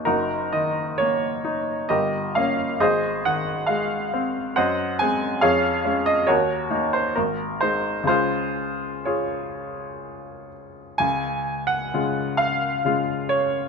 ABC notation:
X:1
M:3/4
L:1/16
Q:1/4=66
K:Db
V:1 name="Grand piano"
[EGB]2 e2 d4 [=GBe]2 f2 | [Ace]2 g2 f4 [ceg]2 a2 | [Adf]3 e [GBd]3 c B2 c2 | [FAc]4 [FAd]6 z2 |
a3 g3 f4 d2 |]
V:2 name="Grand piano" clef=bass
G,,,2 E,2 B,2 E2 =G,,,2 [B,D]2 | A,,,2 E,2 A,2 C2 G,,2 [A,C]2 | F,,2 [A,D]2 E,,2 [B,E]2 A,,,2 [A,E]2 | [D,,D,A,]12 |
D,,4 [D,A,F]4 [D,A,F]4 |]